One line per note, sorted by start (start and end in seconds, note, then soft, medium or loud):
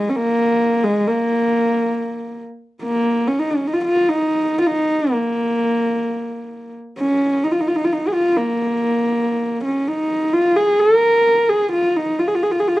0.00 0.10 G#3 medium
0.09 0.17 C#4 medium
0.15 0.85 A#3 loud
0.84 1.09 G#3 medium
1.07 2.41 A#3 medium
2.83 3.29 A#3 medium
3.27 3.40 C#4 medium
3.39 3.51 D#4 medium
3.50 3.68 C#4 medium
3.67 3.75 D#4 medium
3.73 3.84 F4 medium
3.85 4.10 F4 loud
4.09 4.59 D#4 loud
4.60 4.68 F4 medium
4.67 5.14 D#4 loud
5.12 6.72 A#3 medium
6.99 7.45 C#4 medium
7.44 7.53 D#4 medium
7.52 7.62 F4 medium
7.60 7.69 D#4 medium
7.68 7.78 F4 medium
7.76 7.86 D#4 medium
7.84 7.94 F4 medium
7.92 8.09 D#4 medium
8.07 8.14 G#4 medium
8.13 8.38 F4 medium
8.37 9.64 A#3 medium
9.65 9.89 C#4 medium
9.88 10.35 D#4 medium
10.33 10.57 F4 loud
10.56 10.81 G#4 loud
10.79 11.50 A#4 loud
11.49 11.72 G#4 medium
11.72 11.98 F4 medium
11.96 12.20 D#4 medium
12.19 12.29 F4 medium
12.27 12.36 G#4 medium
12.35 12.44 F4 medium
12.43 12.53 G#4 medium
12.51 12.61 F4 medium
12.59 12.69 G#4 medium
12.67 12.78 F4 medium
12.77 12.80 G#4 medium